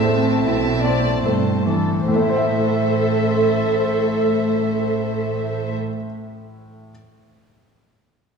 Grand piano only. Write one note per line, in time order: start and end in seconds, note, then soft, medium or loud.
0.00 0.43 A2 soft
0.05 0.69 A3 soft
0.46 1.09 E4 soft
0.86 1.50 C5 soft
1.26 1.92 A3 soft
1.66 2.08 E3 soft
2.08 5.75 A2 soft
2.16 5.83 A3 soft
2.22 5.89 E4 soft
2.29 5.97 C5 soft
2.37 6.04 E5 soft